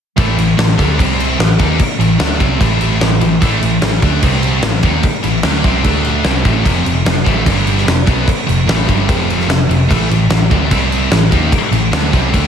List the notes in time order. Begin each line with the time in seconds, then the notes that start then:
0.17 A1 A2 E3 A3, kick, crash
0.38 A1 A2 E3, crash
0.57 A1 A2 E3, snare, crash
0.78 D2 D3 A3 D4, kick, crash
0.98 C2 C3 G3 C4, kick, crash
1.20 crash
1.39 A1 A2 E3, snare, crash
1.59 D#2 D#3 A#3 D#4, kick, crash
1.79 kick, crash
1.99 A1 A2 E3, crash
2.19 D2 D3 A3 D4, snare, crash
2.39 C2 C3 G3 C4, kick, crash
2.59 A1 A2 E3 A3, kick, crash
2.81 crash
3.00 A1 A2 E3, snare, crash
3.20 A1 A2 E3, crash
3.41 A1 A2 E3 A3, kick, crash
3.60 A1 A2 E3, crash
3.81 A1 A2 E3, snare, crash
4.02 D2 D3 A3 D4, kick, crash
4.22 C2 C3 G3 C4, kick, crash
4.43 crash
4.62 A1 A2 E3, snare, crash
4.83 D#2 D#3 A#3 D#4, kick, crash
5.03 kick, crash
5.23 A1 A2 E3, crash
5.43 D2 D3 A3 D4, snare, crash
5.63 C2 C3 G3 C4, kick, crash
5.83 D2 D3 A3 D4, kick, crash
6.05 crash
6.24 C2 C3 G3 C4, snare, crash
6.44 A1 A2 E3 A3, kick, crash
6.64 F1 F2 C3 F3, kick, crash
6.85 F1 F2 C3, crash
7.05 F1 F2 C3, snare, crash
7.24 A1 A2 E3 A3, kick, crash
7.45 G1 G2 D3 G3, kick, crash
7.67 crash
7.78 snare
7.85 F1 F2 C3, snare, crash
8.06 B1 B2 F#3 B3, kick, crash
8.28 kick, crash
8.47 F1 F2 C3, crash
8.67 A1 A2 E3 A3, snare, crash
8.88 G1 G2 D3 G3, kick, crash
9.09 F1 F2 C3 F3, kick, crash
9.30 crash
9.40 snare
9.48 F1 F2 C3, snare, crash
9.69 F1 F2 C3, crash
9.89 A1 A2 E3 A3, kick, crash
10.09 A1 A2 E3, crash
10.29 A1 A2 E3, snare, crash
10.51 D2 D3 A3 D4, kick, crash
10.70 C2 C3 G3 C4, kick, crash
10.92 crash
11.11 A1 A2 E3, snare, crash
11.31 D#2 D#3 A#3 D#4, kick, crash
11.52 kick, crash
11.71 A1 A2 E3, crash
11.91 D2 D3 A3 D4, snare, crash
12.12 C2 C3 G3 C4, kick, crash
12.33 D2 D3 A3 D4, kick, crash